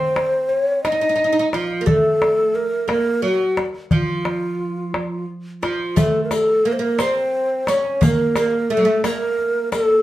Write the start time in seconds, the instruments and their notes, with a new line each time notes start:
Already playing: oud C4, ney C5
0.16 darbuka tek
0.49 ney C#5, darbuka ka
0.84 oud D#4, ney D#5, darbuka tek
0.92 oud D#4
1.01 oud D#4
1.09 oud D#4
1.16 oud D#4, darbuka ka
1.24 oud D#4
1.33 oud D#4
1.39 oud D#4
1.53 oud F3, ney F4, darbuka tek
1.70 darbuka ka
1.81 oud A#3
1.86 oud A3, ney A4, darbuka dum
2.22 darbuka tek
2.55 ney A#4, darbuka ka
2.88 oud A#3, ney A#4, darbuka tek
3.22 oud F#3, ney F#4, darbuka ka
3.57 darbuka tek
3.75 darbuka ka
3.91 oud F3, ney F4, darbuka dum
4.25 darbuka tek
4.59 darbuka ka
4.94 darbuka tek
5.63 oud F3, ney F4, darbuka tek
5.80 darbuka ka
5.96 oud A3, ney A4, riq, darbuka dum
6.24 ney A#4
6.31 ney A4, riq, darbuka tek
6.65 oud A#3, ney A#4, darbuka ka
6.72 ney C5
6.79 oud A#3, ney A#4
6.99 oud C4, ney C5, riq, darbuka tek
7.67 oud C#4, ney C#5, riq, darbuka tek
7.85 darbuka ka
8.01 oud A#3, riq, darbuka dum
8.05 ney A#4
8.36 oud A#3, riq, darbuka tek
8.40 ney A#4
8.70 oud A3, ney A4, darbuka ka
8.77 oud F#3
8.85 oud A3
9.04 oud A#3, ney A#4, riq, darbuka tek
9.39 darbuka ka
9.72 ney A4, riq, darbuka tek
9.91 darbuka ka